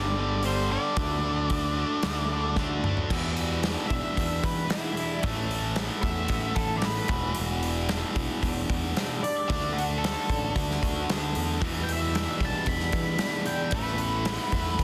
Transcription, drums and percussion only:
0.43 open hi-hat soft
0.97 kick loud
0.97 open hi-hat medium
1.50 kick medium
1.50 open hi-hat medium
2.03 snare loud
2.03 open hi-hat medium
2.56 kick medium
2.56 snare medium
2.84 mid tom medium
2.97 floor tom medium
3.10 kick loud
3.10 crash loud
3.37 open hi-hat medium
3.63 snare medium
3.63 open hi-hat medium
3.90 kick medium
3.90 open hi-hat soft
4.17 kick medium
4.17 open hi-hat medium
4.44 kick medium
4.44 open hi-hat medium
4.70 snare loud
4.70 open hi-hat medium
4.97 open hi-hat medium
5.23 kick loud
5.23 open hi-hat medium
5.51 open hi-hat medium
5.76 snare medium
5.76 open hi-hat medium
6.03 kick medium
6.03 open hi-hat soft
6.28 kick medium
6.28 open hi-hat medium
6.56 kick medium
6.56 open hi-hat medium
6.82 snare loud
6.82 open hi-hat medium
7.08 kick loud
7.08 open hi-hat medium
7.35 open hi-hat medium
7.63 open hi-hat medium
7.89 snare medium
7.89 open hi-hat medium
8.16 kick medium
8.16 open hi-hat soft
8.43 kick medium
8.43 open hi-hat medium
8.70 kick medium
8.70 open hi-hat soft
8.97 snare medium
8.97 open hi-hat medium
9.24 open hi-hat medium
9.50 kick loud
9.50 open hi-hat medium
9.78 open hi-hat medium
10.04 snare loud
10.04 open hi-hat medium
10.30 kick medium
10.30 open hi-hat soft
10.56 kick medium
10.56 open hi-hat medium
10.70 snare soft
10.83 kick medium
10.83 open hi-hat medium
11.10 snare loud
11.10 open hi-hat medium
11.35 open hi-hat medium
11.62 kick loud
11.62 open hi-hat medium
11.89 open hi-hat medium
12.15 snare medium
12.15 open hi-hat medium
12.41 kick medium
12.41 open hi-hat medium
12.66 kick medium
12.66 open hi-hat medium
12.80 snare soft
12.92 kick medium
12.92 open hi-hat medium
13.19 snare loud
13.19 open hi-hat medium
13.46 open hi-hat medium
13.71 kick loud
13.71 open hi-hat medium
13.98 open hi-hat medium
14.25 snare loud
14.25 open hi-hat medium
14.52 kick medium
14.52 open hi-hat soft
14.79 kick medium
14.79 open hi-hat medium

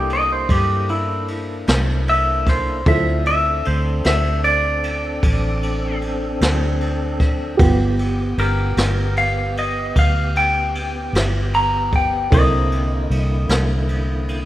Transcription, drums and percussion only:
0.10 ride medium
0.49 kick medium
0.49 ride medium
0.89 ride medium
1.28 ride medium
1.67 snare loud
1.67 ride medium
2.08 ride medium
2.47 kick medium
2.47 snare soft
2.47 ride medium
2.86 kick loud
2.86 ride medium
3.25 ride medium
3.65 ride medium
4.04 snare loud
4.04 ride medium
4.44 ride medium
4.83 ride medium
5.23 kick medium
5.23 ride medium
5.63 ride medium
6.01 ride medium
6.41 snare loud
6.41 ride medium
6.81 ride medium
7.20 kick medium
7.20 snare soft
7.20 ride medium
7.59 kick loud
7.59 ride medium
7.99 ride medium
8.38 ride medium
8.77 snare loud
8.77 ride medium
9.17 ride medium
9.57 ride medium
9.96 kick medium
9.96 ride medium
10.36 ride medium
10.75 ride medium
11.15 snare loud
11.15 ride loud
11.54 ride medium
11.92 kick medium
11.92 ride medium
12.32 kick loud
12.32 ride medium
12.71 ride medium
13.11 ride medium
13.49 snare loud
13.49 ride medium
13.89 ride medium
14.28 ride medium

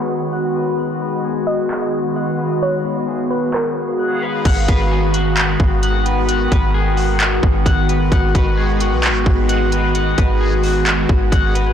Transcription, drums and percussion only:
1.71 clap loud
3.31 open hi-hat medium
3.54 clap loud
4.45 kick loud
4.45 closed hi-hat medium
4.45 crash medium
4.68 kick medium
4.68 closed hi-hat medium
5.14 closed hi-hat medium
5.37 clap loud
5.37 closed hi-hat medium
5.60 kick loud
5.83 closed hi-hat medium
6.06 closed hi-hat medium
6.29 closed hi-hat medium
6.52 kick medium
6.52 closed hi-hat medium
6.97 open hi-hat medium
7.20 clap loud
7.20 closed hi-hat medium
7.43 kick loud
7.66 kick medium
7.66 closed hi-hat medium
7.89 closed hi-hat medium
8.12 kick loud
8.12 closed hi-hat medium
8.35 kick loud
8.35 closed hi-hat medium
8.80 closed hi-hat medium
9.03 clap loud
9.03 closed hi-hat medium
9.26 kick loud
9.49 closed hi-hat medium
9.72 closed hi-hat medium
9.95 closed hi-hat medium
10.18 kick medium
10.18 closed hi-hat medium
10.63 open hi-hat medium
10.86 clap loud
10.86 closed hi-hat medium
11.09 kick loud
11.32 kick medium
11.32 closed hi-hat medium
11.55 closed hi-hat medium

